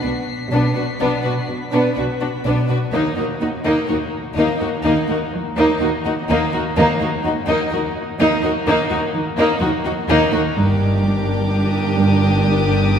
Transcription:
Already playing: violin section B6 C7
0.01 double bass section B1, cello section B2 B3, viola section D4, violin section F#4 B4
0.51 double bass section B1, cello section B2, violin section B3 D4, viola section D4
0.75 cello section B2, viola section D4, violin section F#4 B4
0.99 double bass section B1, cello section B2, violin section B3 D4, viola section D4
1.24 cello section B2, viola section D4, violin section F#4 B4
1.49 cello section B2
1.72 cello section B2, violin section B3 D4, viola section D4
1.96 double bass section B1, cello section B2, viola section D4, violin section F#4 B4
2.20 cello section B2, viola section D4, violin section D4 F#4
2.44 double bass section B1, cello section B2, violin section B3 D4, viola section D4
2.69 cello section B2, viola section D4, violin section F#4 B4
2.92 cello section D#2 D#3, double bass section D#2, violin section A#3 D#4, viola section D#4
3.17 cello section D#2, viola section D#4, violin section F#4 A#4
3.41 cello section D#2 D#4, double bass section D#2, violin section D#4 F#4, viola section D#4
3.63 cello section D#2, violin section A#3 D#4, viola section D#4
3.88 cello section D#2 D#4, double bass section D#2, viola section D#4, violin section F#4 A#4
4.36 double bass section D#2, cello section D#2 D#3, violin section A#3 D#4, viola section D#4
4.60 cello section D#2, viola section D#4, violin section F#4 A#4
4.84 cello section D#2 D#3, double bass section D#2, violin section A#3 D#4, viola section D#4
5.09 cello section D#2, viola section D#4, violin section F#4 A#4
5.34 cello section D#3
5.57 cello section D#2, violin section A#3 D#4, viola section D#4
5.81 cello section D#2 D#3, double bass section D#2, viola section D#4, violin section F#4 A#4
6.05 cello section D#2, violin section D#4 F#4, viola section D#4
6.29 cello section D#2 D#3, double bass section D#2, violin section A#3 D#4, viola section D#4
6.53 cello section D#2, viola section D#4, violin section F#4 A#4
6.77 cello section D#2 D#3, double bass section D#2, violin section A#3 D#4, viola section D#4
7.01 cello section D#2, viola section D#4, violin section F#4 A#4
7.24 cello section D#2 D#4, double bass section D#2, viola section D#4, violin section D#4 F#4
7.48 cello section D#2, violin section A#3 D#4, viola section D#4
7.71 cello section D#2 D#4, double bass section D#2, viola section D#4, violin section F#4 A#4
8.19 double bass section D#2, cello section D#2 D#3, violin section A#3 D#4, viola section D#4
8.43 cello section D#2, viola section D#4, violin section F#4 A#4
8.66 double bass section D#2, cello section D#2 D#3, violin section A#3 D#4, viola section D#4
8.90 cello section D#2, viola section D#4, violin section F#4 A#4
9.14 cello section D#3
9.37 cello section D#2, violin section A#3 D#4, viola section D#4
9.61 cello section D#2 D#3, double bass section D#2, viola section D#4, violin section F#4 A#4
9.84 cello section D#2, violin section D#4 F#4, viola section D#4
10.09 cello section D#2 D#3, double bass section D#2, violin section A#3 D#4, viola section D#4
10.32 cello section D#2, viola section D#4, violin section F#4 A#4
10.56 double bass section G1, cello section G2, viola section D4, violin section G4 A#4 D6
11.04 cello section G3
11.51 cello section G3, violin section D#6
11.98 cello section G2
12.46 cello section G2
12.95 cello section G2

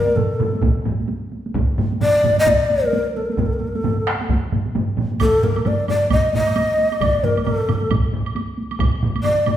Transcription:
Already playing: shakuhachi A#4
0.07 taiko high
0.16 shakuhachi A4, taiko low-mid, taiko mid, taiko high
0.39 taiko low-mid, taiko mid, taiko high
0.53 taiko high
0.62 taiko, taiko low-mid, taiko mid, taiko high
0.85 taiko low-mid, taiko mid, taiko high
1.00 taiko high
1.09 taiko high
1.32 taiko high
1.46 taiko high
1.54 taiko, taiko low-mid, taiko mid, taiko high
1.78 taiko low-mid, taiko mid, taiko high
1.92 taiko high
2.01 shakuhachi D5, taiko low-mid, taiko mid, taiko high
2.24 taiko low-mid, taiko mid, taiko high
2.38 shakuhachi D#5, taiko high
2.46 shakuhachi D5, taiko, taiko low-mid, taiko mid, taiko high
2.70 taiko high
2.84 shakuhachi A#4, taiko high
2.93 taiko high
3.16 shakuhachi A4, taiko high
3.25 shakuhachi A#4
3.30 shakuhachi A4, taiko high
3.37 shakuhachi A#4, taiko, taiko low-mid, taiko mid, taiko high
3.46 shakuhachi A4
3.53 shakuhachi A#4
3.59 shakuhachi A4, taiko high
3.67 shakuhachi A#4
3.75 shakuhachi A4, taiko high
3.84 taiko low-mid, taiko mid, taiko high
4.07 taiko rim
4.21 taiko high
4.29 taiko, taiko low-mid, taiko mid, taiko high
4.52 taiko low-mid, taiko mid, taiko high
4.66 taiko high
4.75 taiko low-mid, taiko mid, taiko high
4.98 taiko low-mid, taiko mid, taiko high
5.12 taiko high
5.20 shakuhachi A4, taiko, taiko low-mid, taiko mid, taiko high, high woodblock
5.43 shakuhachi A#4, taiko low-mid, taiko mid, taiko high
5.56 taiko high, high woodblock
5.65 shakuhachi D5, taiko low-mid, taiko mid, taiko high, high woodblock
5.88 shakuhachi D5, taiko low-mid, taiko mid, taiko high, high woodblock
6.10 shakuhachi D#5, taiko, taiko low-mid, taiko mid, taiko high, high woodblock
6.33 shakuhachi D#5, taiko low-mid, taiko mid, taiko high
6.47 taiko high, high woodblock
6.56 taiko high, high woodblock
6.78 taiko high
6.92 taiko high, high woodblock
7.01 shakuhachi D5, taiko, taiko low-mid, taiko mid, taiko high, high woodblock
7.24 shakuhachi A#4, taiko low-mid, taiko mid, taiko high
7.37 taiko high, high woodblock
7.45 shakuhachi A4, taiko low-mid, taiko mid, taiko high, high woodblock
7.68 taiko low-mid, taiko mid, taiko high, high woodblock
7.82 taiko high
7.90 taiko, taiko low-mid, taiko mid, taiko high, high woodblock
8.13 taiko low-mid, taiko mid, taiko high
8.26 high woodblock
8.35 taiko high, high woodblock
8.57 taiko high
8.71 taiko high, high woodblock
8.79 taiko, taiko low-mid, taiko mid, taiko high, high woodblock
9.02 taiko low-mid, taiko mid, taiko high
9.15 taiko high, high woodblock
9.23 shakuhachi D5, taiko low-mid, taiko mid, taiko high, high woodblock
9.46 taiko low-mid, taiko mid, taiko high, high woodblock

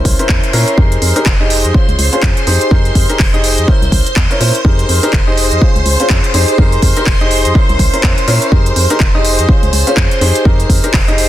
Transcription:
Already playing: grand piano C#4 E4 A#4 C5, string machine C5 C6
0.05 fm bass C2, kick, open hi-hat
0.19 grand piano C#4 E4 A#4 C5, closed hi-hat
0.29 fm bass E2, kick, clap
0.43 closed hi-hat
0.53 fm bass A#2, grand piano C#4 E4 A#4 C#5, open hi-hat
0.68 closed hi-hat
0.78 fm bass F2, grand piano D#4 G4 G#4 A#4, kick
0.92 closed hi-hat
1.02 fm bass F2, open hi-hat
1.16 grand piano D#4 G4 G#4 A#4, closed hi-hat
1.26 fm bass F1, kick, clap
1.40 grand piano D#4 G4 G#4 D#5
1.50 open hi-hat
1.64 fm bass F2, closed hi-hat
1.74 grand piano C#4 F4 G#4 C5, kick
1.88 fm bass C#2, closed hi-hat
1.99 fm bass C#2, open hi-hat
2.13 grand piano C#4 F4 G#4 C5, closed hi-hat
2.23 fm bass F2, kick, clap
2.37 closed hi-hat
2.47 fm bass F2, grand piano D#4 G4 G#4 C5, open hi-hat
2.61 closed hi-hat
2.71 fm bass F2, grand piano D#4 G4 G#4 A#4, kick
2.85 closed hi-hat
2.95 fm bass F2, kick, open hi-hat
3.09 grand piano D#4 G4 G#4 A#4, closed hi-hat
3.20 fm bass F1, kick, clap, open hi-hat
3.34 grand piano D#4 G4 G#4 D#5, closed hi-hat
3.44 open hi-hat
3.58 fm bass F2, closed hi-hat
3.68 grand piano C#4 E4 A#4 C5, kick
3.82 fm bass C2, closed hi-hat
3.92 fm bass C2, kick, open hi-hat
4.06 closed hi-hat
4.16 fm bass E2, kick, clap
4.31 grand piano C#4 E4 A#4 C#5, closed hi-hat
4.40 fm bass A#2, grand piano C#4 E4 A#4 C5, open hi-hat
4.55 closed hi-hat
4.65 fm bass F2, grand piano D#4 G4 G#4 A#4, kick
4.79 closed hi-hat
4.89 fm bass F2, open hi-hat
5.03 grand piano D#4 G4 G#4 A#4, closed hi-hat
5.13 fm bass F1, kick, clap
5.27 grand piano D#4 G4 G#4 D#5
5.37 open hi-hat
5.51 fm bass F2, closed hi-hat
5.62 grand piano C#4 F4 G#4 C5, kick
5.76 fm bass C#2, closed hi-hat
5.86 fm bass C#2, open hi-hat
6.00 grand piano C#4 F4 G#4 C5, closed hi-hat
6.10 fm bass F2, kick, clap
6.24 closed hi-hat
6.34 fm bass F2, grand piano D#4 G4 G#4 C5, open hi-hat
6.48 closed hi-hat
6.58 fm bass F2, grand piano D#4 G4 G#4 A#4, kick
6.72 closed hi-hat
6.82 fm bass F2, kick, open hi-hat
6.97 grand piano D#4 G4 G#4 A#4, closed hi-hat
7.07 fm bass F1, kick, clap, open hi-hat
7.21 grand piano D#4 G4 G#4 D#5, closed hi-hat
7.31 open hi-hat
7.45 fm bass F2, closed hi-hat
7.55 grand piano C#4 E4 A#4 C5, kick
7.69 fm bass C2, closed hi-hat
7.79 fm bass C2, kick, open hi-hat
7.93 grand piano C#4 E4 A#4 C5, closed hi-hat
8.04 fm bass E2, kick, clap
8.18 closed hi-hat
8.28 fm bass A#2, grand piano C#4 E4 A#4 C#5, open hi-hat
8.42 closed hi-hat
8.52 fm bass F2, grand piano D#4 G4 G#4 A#4, kick
8.66 closed hi-hat
8.76 fm bass F2, open hi-hat
8.90 grand piano D#4 G4 G#4 A#4, closed hi-hat
9.00 fm bass F1, kick, clap
9.15 grand piano D#4 G4 G#4 D#5
9.25 open hi-hat
9.39 fm bass F2, closed hi-hat
9.49 grand piano C#4 F4 G#4 C5, kick
9.63 fm bass C#2, closed hi-hat
9.73 fm bass C#2, open hi-hat
9.87 grand piano C#4 F4 G#4 C5, closed hi-hat
9.97 fm bass F2, kick, clap
10.11 closed hi-hat
10.21 fm bass F2, grand piano D#4 G4 G#4 C5, open hi-hat
10.35 closed hi-hat
10.45 fm bass F2, grand piano D#4 G4 G#4 A#4, kick
10.60 closed hi-hat
10.70 fm bass F2, kick, open hi-hat
10.84 grand piano D#4 G4 G#4 A#4, closed hi-hat
10.94 fm bass F1, kick, clap, open hi-hat
11.08 grand piano D#4 G4 G#4 D#5, closed hi-hat
11.18 open hi-hat

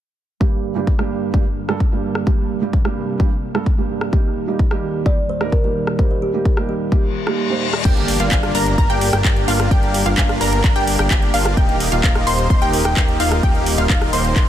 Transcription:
0.40 felt piano G2 G3 A#3 D4 G4, analog synth pad G2 D3 A#3, kick
0.75 felt piano G2 G3 A#3 D4 G4
0.87 kick
0.98 felt piano G2 G3 A#3 D4 G4, cross-stick
1.33 felt piano G2 G3 A#3 D4 G4, kick
1.68 felt piano G2 G3 A#3 D4 A4, cross-stick
1.80 kick
1.91 felt piano G2 G3 A#3 D4 G4
2.15 cross-stick
2.26 felt piano G2 G3 A#3 D4 G4, analog synth pad C3, kick
2.61 felt piano G2 G3 A#3 D4 G4
2.73 kick
2.85 felt piano G2 G3 A#3 D4 G4, cross-stick
3.19 felt piano G2 G3 A#3 D4 G4, kick
3.54 felt piano G2 G3 A#3 D4 A4, cross-stick
3.66 kick
3.78 felt piano G2 G3 A#3 D4 G4
4.01 cross-stick
4.12 analog synth pad D#2 A#2 G3, felt piano G3 A#3 D#4 G4, kick
4.47 felt piano G3 A#3 D#4 G4
4.59 kick
4.71 felt piano G3 A#3 D#4 G4, cross-stick
5.05 felt piano G3 A#3 D#4 G4, kalimba D5, kick
5.29 kalimba C5
5.40 felt piano G3 A#3 D#4 A#4, cross-stick
5.52 kalimba A#4, kick
5.63 felt piano G3 A#3 D#4 G4, kalimba A#4
5.87 cross-stick
5.98 felt piano G3 A#3 D#4 G4, kalimba C5, kick
6.11 kalimba C5
6.22 kalimba G4
6.33 felt piano G3 A#3 D#4 G4
6.45 kick
6.57 felt piano G3 A#3 D#4 G4, cross-stick
6.69 kalimba G4
6.91 felt piano G3 A#3 D#4 G4, kick, reverse cymbal
7.26 felt piano G3 A#3 D#4 G4, cross-stick
7.50 felt piano G3 A#3 D#4 C5
7.73 cross-stick
7.85 analog synth bass G1, analog synth pad G3 D4 A#4, supersaw synth A#3 D4 G4, synth pluck G5, kick, closed hi-hat, crash, impact
7.97 closed hi-hat
8.08 open hi-hat
8.20 analog synth bass G1, supersaw synth A#3 D4 F4, synth pluck F5, closed hi-hat
8.31 analog synth bass G1, supersaw synth A#3 D4 F4, synth pluck F5, kick, clap, closed hi-hat
8.43 cross-stick, closed hi-hat
8.55 analog synth bass G1, supersaw synth A#3 D4 A#4, synth pluck A#5, open hi-hat
8.66 closed hi-hat
8.78 analog synth bass G1, supersaw synth A#3 D4 A#4, synth pluck A#5, kick, closed hi-hat
8.90 analog synth bass G1, supersaw synth A#3 D4 G4, synth pluck G5, closed hi-hat
9.01 open hi-hat
9.13 analog synth bass G1, supersaw synth A#3 D4 G4, synth pluck G5, cross-stick, closed hi-hat
9.24 analog synth bass G1, supersaw synth A#3 D4 G4, synth pluck G5, kick, clap, closed hi-hat
9.36 closed hi-hat
9.48 analog synth bass G1, supersaw synth A#3 D4 F4, synth pluck F5, open hi-hat
9.60 cross-stick, closed hi-hat
9.71 analog synth bass G1, supersaw synth A#3 D4 G4, synth pluck G5, kick, closed hi-hat
9.83 closed hi-hat
9.94 open hi-hat
10.06 analog synth bass G1, supersaw synth A#3 D4 F4, synth pluck F5, closed hi-hat
10.18 analog synth bass G1, supersaw synth A#3 D4 F4, synth pluck F5, kick, clap, closed hi-hat
10.29 cross-stick, closed hi-hat
10.41 analog synth bass G1, supersaw synth A#3 D4 A#4, synth pluck A#5, open hi-hat
10.53 closed hi-hat
10.64 analog synth bass G1, supersaw synth A#3 D4 A#4, synth pluck A#5, kick, clap, closed hi-hat
10.75 analog synth bass G1, supersaw synth A#3 D4 G4, synth pluck G5, closed hi-hat
10.87 open hi-hat
10.99 analog synth bass G1, supersaw synth A#3 D4 G4, synth pluck G5, cross-stick, closed hi-hat
11.10 analog synth bass G1, supersaw synth A#3 D4 G4, synth pluck G5, kick, clap, closed hi-hat
11.22 closed hi-hat
11.34 analog synth bass G1, supersaw synth A#3 D4 F4, synth pluck F5, open hi-hat
11.46 cross-stick, closed hi-hat
11.57 analog synth bass D#1, analog synth pad D#3 A#3 G4, supersaw synth A#3 D#4 G4, synth pluck G5, kick, closed hi-hat
11.69 closed hi-hat
11.80 open hi-hat
11.92 analog synth bass D#1, supersaw synth A#3 D#4 F4, synth pluck F5, closed hi-hat
12.04 analog synth bass D#1, supersaw synth A#3 D#4 F4, synth pluck F5, kick, clap, closed hi-hat
12.15 cross-stick, closed hi-hat
12.27 analog synth bass D#1, supersaw synth A#3 D#4 C5, synth pluck C6, open hi-hat
12.39 closed hi-hat
12.50 analog synth bass D#1, supersaw synth A#3 D#4 C5, synth pluck C6, kick, closed hi-hat
12.62 analog synth bass D#1, supersaw synth A#3 D#4 G4, synth pluck G5, closed hi-hat
12.73 open hi-hat
12.85 analog synth bass D#1, supersaw synth A#3 D#4 G4, synth pluck G5, cross-stick, closed hi-hat
12.97 analog synth bass D#1, supersaw synth A#3 D#4 G4, synth pluck G5, kick, clap, closed hi-hat
13.08 closed hi-hat
13.20 analog synth bass D#1, supersaw synth A#3 D#4 F4, synth pluck F5, open hi-hat
13.32 cross-stick, closed hi-hat
13.43 analog synth bass D#1, supersaw synth A#3 D#4 G4, synth pluck G5, kick, closed hi-hat
13.55 closed hi-hat
13.66 open hi-hat
13.78 analog synth bass D#1, supersaw synth A#3 D#4 F4, synth pluck F5, closed hi-hat
13.90 analog synth bass D#1, supersaw synth A#3 D#4 F4, synth pluck F5, kick, clap, closed hi-hat
14.02 cross-stick, closed hi-hat
14.13 analog synth bass D#1, supersaw synth A#3 D#4 C5, synth pluck C6, open hi-hat
14.25 closed hi-hat
14.36 analog synth bass D#1, supersaw synth A#3 D#4 C5, synth pluck C6, kick, clap, closed hi-hat

